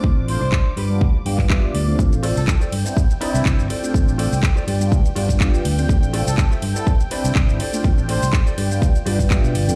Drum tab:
RD |----------------|--x---x---x---x-|--x---x---x---x-|--x---x---x---x-|
HH |--o---o---o---o-|--o---o---o---o-|--o---o---o---o-|--o---o---o---o-|
SH |----------------|xx-xxx-xxx-xxx-x|xx-xxx-xxx-xxx-x|xx-xxx-xxx-xxx-x|
CP |----x------xx---|----x-------x---|----x-------x---|----x-------x---|
BD |o---o---o--oo---|o---o---o---o---|o---o---o--oo---|o---o---o---o---|

RD |--x---x---x---x-|
HH |--o---o---o---o-|
SH |xx-xxx-xxx-xxx-x|
CP |----x-------x---|
BD |o---o---o--oo---|